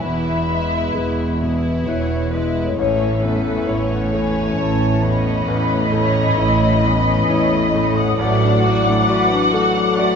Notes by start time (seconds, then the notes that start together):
Already playing: B2 E4
0.03 E1 E2 E3 B3 B4 E5 B5
0.50 G#3 E4
0.96 E1 E2 E4 G#4 B4
1.43 B2 E4
1.87 E1 E2 E4 B4 C#5
2.32 G#3 E4 B4
2.61 A2
2.66 A3
2.70 E4
2.75 A2 A4 C#5 E5
2.79 A1 E3 C#4
3.23 E2 C#4 B4
3.67 A1 A2 E4 C#5
3.91 A4 F#5
4.12 A3 C#4 B4 G#5
4.58 A1 A2 E4 C#5 A5
5.02 E2 C#4 D#5 B5
5.48 A1 A2 E3 C#4 B4
5.92 A3 C#4 C#5
6.37 A1 A2 E4 C#5
6.81 E2 C#4 D#5
7.29 A1 A2 E4 C#5
7.73 A3 C#4
7.97 F#5 D#6
8.02 A2
8.06 A3
8.10 F#4
8.18 A1 A2 F#3 A3 F#4 D5 F#5 D6
8.41 D4
8.63 A2 F#4 D5
8.86 D4
9.08 A3 F#4 B4 D5
9.31 D4
9.53 A3 F#4 A4
9.76 D4
9.97 A3 F#4 D5